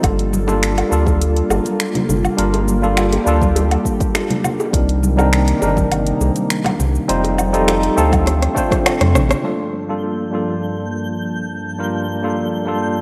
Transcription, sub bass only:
0, 0, Header, 1, 2, 480
1, 0, Start_track
1, 0, Key_signature, -2, "minor"
1, 0, Tempo, 588235
1, 26, Time_signature, 4, 2, 24, 8
1, 10620, End_track
2, 0, Start_track
2, 0, Title_t, "Sub bass"
2, 0, Program_c, 0, 38
2, 27, Note_on_c, 0, 31, 92
2, 679, Note_off_c, 0, 31, 0
2, 748, Note_on_c, 0, 38, 81
2, 1159, Note_off_c, 0, 38, 0
2, 1223, Note_on_c, 0, 31, 98
2, 1303, Note_off_c, 0, 31, 0
2, 1705, Note_on_c, 0, 31, 74
2, 1861, Note_off_c, 0, 31, 0
2, 1944, Note_on_c, 0, 31, 99
2, 2597, Note_off_c, 0, 31, 0
2, 2664, Note_on_c, 0, 38, 82
2, 3077, Note_off_c, 0, 38, 0
2, 3861, Note_on_c, 0, 36, 92
2, 4516, Note_off_c, 0, 36, 0
2, 4587, Note_on_c, 0, 31, 82
2, 4999, Note_off_c, 0, 31, 0
2, 5064, Note_on_c, 0, 36, 94
2, 5144, Note_off_c, 0, 36, 0
2, 5545, Note_on_c, 0, 36, 73
2, 5700, Note_off_c, 0, 36, 0
2, 5789, Note_on_c, 0, 29, 94
2, 6440, Note_off_c, 0, 29, 0
2, 6507, Note_on_c, 0, 38, 77
2, 6919, Note_off_c, 0, 38, 0
2, 7351, Note_on_c, 0, 41, 101
2, 7465, Note_on_c, 0, 33, 97
2, 7477, Note_off_c, 0, 41, 0
2, 7620, Note_off_c, 0, 33, 0
2, 10620, End_track
0, 0, End_of_file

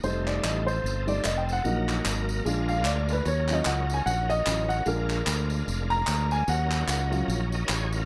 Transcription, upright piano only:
0, 0, Header, 1, 2, 480
1, 0, Start_track
1, 0, Key_signature, -6, "minor"
1, 0, Tempo, 402414
1, 54, Time_signature, 4, 2, 24, 8
1, 9604, End_track
2, 0, Start_track
2, 0, Title_t, "Upright piano"
2, 0, Program_c, 0, 0
2, 43, Note_on_c, 0, 55, 54
2, 45, Note_on_c, 0, 57, 53
2, 45, Note_on_c, 0, 72, 84
2, 52, Note_on_c, 0, 63, 66
2, 321, Note_on_c, 0, 74, 82
2, 334, Note_off_c, 0, 72, 0
2, 517, Note_on_c, 0, 75, 84
2, 535, Note_off_c, 0, 74, 0
2, 766, Note_off_c, 0, 55, 0
2, 767, Note_off_c, 0, 57, 0
2, 771, Note_off_c, 0, 63, 0
2, 794, Note_on_c, 0, 72, 92
2, 810, Note_off_c, 0, 75, 0
2, 1275, Note_on_c, 0, 55, 46
2, 1278, Note_on_c, 0, 57, 44
2, 1279, Note_on_c, 0, 63, 53
2, 1287, Note_on_c, 0, 74, 90
2, 1297, Note_off_c, 0, 72, 0
2, 1465, Note_off_c, 0, 55, 0
2, 1467, Note_off_c, 0, 57, 0
2, 1468, Note_off_c, 0, 63, 0
2, 1498, Note_on_c, 0, 75, 77
2, 1499, Note_off_c, 0, 74, 0
2, 1641, Note_on_c, 0, 79, 75
2, 1661, Note_off_c, 0, 75, 0
2, 1796, Note_off_c, 0, 79, 0
2, 1819, Note_on_c, 0, 78, 99
2, 1962, Note_on_c, 0, 54, 56
2, 1963, Note_on_c, 0, 58, 50
2, 1973, Note_on_c, 0, 63, 61
2, 2501, Note_off_c, 0, 78, 0
2, 2881, Note_off_c, 0, 54, 0
2, 2881, Note_off_c, 0, 58, 0
2, 2887, Note_off_c, 0, 63, 0
2, 2923, Note_on_c, 0, 56, 57
2, 2927, Note_on_c, 0, 62, 50
2, 2943, Note_on_c, 0, 65, 65
2, 3211, Note_on_c, 0, 77, 97
2, 3268, Note_off_c, 0, 56, 0
2, 3271, Note_off_c, 0, 62, 0
2, 3279, Note_off_c, 0, 65, 0
2, 3409, Note_on_c, 0, 74, 71
2, 3421, Note_off_c, 0, 77, 0
2, 3730, Note_on_c, 0, 71, 80
2, 3742, Note_off_c, 0, 74, 0
2, 3897, Note_off_c, 0, 71, 0
2, 3905, Note_on_c, 0, 73, 89
2, 4164, Note_on_c, 0, 54, 51
2, 4176, Note_on_c, 0, 61, 48
2, 4183, Note_on_c, 0, 65, 57
2, 4210, Note_on_c, 0, 75, 79
2, 4230, Note_off_c, 0, 73, 0
2, 4371, Note_on_c, 0, 78, 88
2, 4377, Note_off_c, 0, 75, 0
2, 4466, Note_off_c, 0, 54, 0
2, 4472, Note_off_c, 0, 61, 0
2, 4476, Note_off_c, 0, 65, 0
2, 4698, Note_on_c, 0, 80, 90
2, 4703, Note_off_c, 0, 78, 0
2, 4773, Note_off_c, 0, 80, 0
2, 4791, Note_on_c, 0, 80, 75
2, 4841, Note_on_c, 0, 78, 109
2, 4849, Note_off_c, 0, 80, 0
2, 5124, Note_on_c, 0, 75, 114
2, 5133, Note_off_c, 0, 78, 0
2, 5322, Note_on_c, 0, 54, 42
2, 5331, Note_on_c, 0, 61, 37
2, 5334, Note_on_c, 0, 65, 48
2, 5576, Note_off_c, 0, 54, 0
2, 5582, Note_off_c, 0, 61, 0
2, 5583, Note_off_c, 0, 65, 0
2, 5592, Note_on_c, 0, 78, 108
2, 5623, Note_off_c, 0, 75, 0
2, 5791, Note_off_c, 0, 78, 0
2, 5795, Note_on_c, 0, 56, 58
2, 5799, Note_on_c, 0, 62, 48
2, 5808, Note_on_c, 0, 65, 61
2, 5821, Note_on_c, 0, 70, 83
2, 6144, Note_off_c, 0, 56, 0
2, 6147, Note_off_c, 0, 62, 0
2, 6151, Note_off_c, 0, 65, 0
2, 6526, Note_off_c, 0, 70, 0
2, 7040, Note_on_c, 0, 82, 127
2, 7538, Note_on_c, 0, 80, 104
2, 7540, Note_off_c, 0, 82, 0
2, 7744, Note_off_c, 0, 80, 0
2, 7745, Note_on_c, 0, 78, 93
2, 8215, Note_off_c, 0, 78, 0
2, 8233, Note_on_c, 0, 78, 78
2, 8485, Note_on_c, 0, 54, 60
2, 8487, Note_on_c, 0, 61, 51
2, 8498, Note_on_c, 0, 65, 57
2, 8671, Note_off_c, 0, 78, 0
2, 8787, Note_off_c, 0, 54, 0
2, 8787, Note_off_c, 0, 61, 0
2, 8794, Note_off_c, 0, 65, 0
2, 9604, End_track
0, 0, End_of_file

